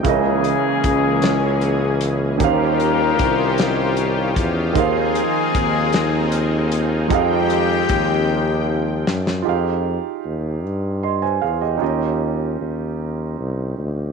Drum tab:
HH |x-x-x-x-x-x-|x-x-x-x-x-x-|x-x-x-x-x-x-|x-x-x-------|
SD |------o-----|------o-----|------o-----|----------oo|
BD |o---o-------|o---o-----o-|o---o-------|o---o-------|

HH |------------|------------|
SD |------------|------------|
BD |------------|------------|